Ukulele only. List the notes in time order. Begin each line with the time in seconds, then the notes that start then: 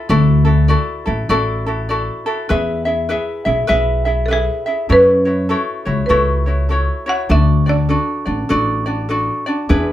0.09 E4 F#4 A4 D5
0.45 E4 F#4 A4
0.68 E4 F#4 A4 D5
1.06 E4 F#4 A4
1.29 E4 F#4 A4 D5
1.66 E4 F#4 A4
1.89 E4 F#4 A4 D5
2.26 E4 F#4 A4
2.49 E4 G#4 B4 E5
2.85 E4 G#4 E5
3.09 E4 G#4 B4 E5
3.45 E4 G#4 E5
3.67 E4 G#4 B4 E5
4.05 E4 G#4 E5
4.28 E4 G#4 B4 E5
4.66 E4 G#4 E5
4.89 E4 F#4 A4 C#5
5.25 E4 F#4 C#5
5.49 E4 F#4 A4 C#5
5.85 E4 F#4 C#5
6.09 E4 F#4 A4 C#5
6.46 E4 F#4 C#5
6.69 E4 F#4 A4 C#5
7.06 E4 F#4 C#5
7.29 D4 F#4 A4 D5
7.66 D4 F#4 D5
7.89 D4 F#4 A4 D5
8.26 D4 F#4 D5
8.49 D4 F#4 A4 D5
8.86 D4 F#4 D5
9.09 D4 F#4 A4 D5
9.46 D4 F#4 D5
9.69 D4 E4 G#4 B4